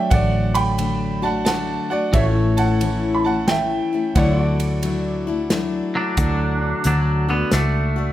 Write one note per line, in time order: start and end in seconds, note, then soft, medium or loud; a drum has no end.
0.00 2.10 F#3 medium
0.00 0.10 D4 soft
0.00 2.11 A4 medium
0.00 2.11 D5 medium
0.00 0.11 E5 medium
0.00 0.11 G5 medium
0.10 1.77 A1 medium
0.10 0.77 D3 medium
0.10 0.78 A3 medium
0.10 0.78 D4 medium
0.10 0.53 D5 medium
0.10 0.56 F#5 medium
0.10 kick loud
0.10 ride medium
0.55 1.19 G5 medium
0.55 1.24 B5 loud
0.55 ride medium
0.78 1.22 D3 medium
0.78 1.23 A3 medium
0.78 1.22 D4 medium
0.78 ride medium
1.22 1.46 A3 soft
1.22 1.47 D4 soft
1.22 1.46 F#4 soft
1.22 1.45 F#5 medium
1.22 1.43 A5 medium
1.45 1.90 D3 medium
1.45 1.91 A3 medium
1.45 1.91 D4 medium
1.45 1.90 F#4 medium
1.45 1.88 F#5 medium
1.45 1.91 A5 loud
1.45 snare medium
1.45 ride medium
1.90 2.14 A3 soft
1.90 2.15 D4 soft
1.90 2.14 F#4 medium
1.90 2.13 D5 medium
1.90 2.12 F#5 medium
2.13 3.79 A1 medium
2.13 2.81 A2 medium
2.13 2.81 E3 medium
2.13 2.82 A3 medium
2.13 2.82 C#4 medium
2.13 2.83 E4 medium
2.13 2.38 F#4 medium
2.13 4.14 A4 medium
2.13 2.25 C#5 medium
2.13 4.15 C#5 medium
2.13 2.23 E5 medium
2.13 kick loud
2.13 ride medium
2.38 4.14 E4 medium
2.57 3.13 F#5 medium
2.57 3.17 A5 medium
2.57 ride medium
2.81 3.25 E3 medium
2.81 3.26 A3 medium
2.81 3.25 C#4 medium
2.81 3.25 E4 medium
2.81 ride medium
3.15 3.24 B5 medium
3.25 3.48 A3 soft
3.25 3.49 C#4 soft
3.25 3.49 E4 soft
3.25 3.48 F#5 medium
3.25 3.49 A5 medium
3.48 3.93 E3 medium
3.48 3.93 A3 medium
3.48 3.93 C#4 medium
3.48 3.91 E4 medium
3.48 4.13 E5 medium
3.48 4.18 G5 medium
3.48 snare medium
3.48 ride medium
3.93 4.15 A3 soft
3.93 4.17 C#4 soft
3.93 4.16 E4 soft
4.15 5.81 D2 medium
4.15 4.83 D3 medium
4.15 4.82 F#3 medium
4.15 4.83 A3 medium
4.15 4.84 D4 medium
4.15 4.42 E4 medium
4.15 4.84 E4 medium
4.15 6.17 A4 medium
4.15 4.39 C#5 medium
4.15 5.91 D5 medium
4.15 5.90 F#5 medium
4.15 kick loud
4.15 ride medium
4.39 6.16 F#4 medium
4.39 6.18 D5 medium
4.60 ride medium
4.83 5.27 F#3 medium
4.83 5.28 A3 medium
4.83 5.27 D4 medium
4.83 5.26 E4 medium
4.83 ride medium
5.27 5.50 A3 soft
5.27 5.51 D4 medium
5.27 5.51 E4 medium
5.50 6.17 F#3 medium
5.50 6.17 A3 medium
5.50 6.17 D4 medium
5.50 6.19 E4 medium
5.50 snare medium
5.50 ride medium
5.95 6.82 F#3 medium
5.95 6.86 D4 loud
6.17 6.73 D2 medium
6.17 6.83 D3 medium
6.17 6.85 A3 medium
6.17 6.85 D4 medium
6.17 8.13 F#4 medium
6.17 6.86 F#4 medium
6.17 8.13 A4 medium
6.17 8.13 D5 medium
6.17 kick loud
6.17 closed hi-hat medium
6.84 7.43 D2 medium
6.84 7.29 D3 medium
6.84 7.27 F#3 medium
6.84 7.29 A3 medium
6.84 7.29 D4 medium
6.84 7.30 D4 medium
6.84 7.27 F#4 medium
6.84 closed hi-hat medium
7.28 7.51 D3 medium
7.28 7.51 A3 soft
7.28 7.53 B3 medium
7.28 7.52 D4 soft
7.28 7.52 F#4 soft
7.51 8.10 C#2 medium
7.51 7.97 A3 medium
7.51 8.13 A3 medium
7.51 7.96 D4 medium
7.51 8.13 D4 medium
7.51 7.95 F#4 medium
7.51 snare medium
7.51 closed hi-hat medium
7.96 8.13 A3 soft
7.96 8.13 D4 soft
7.96 8.13 F#4 soft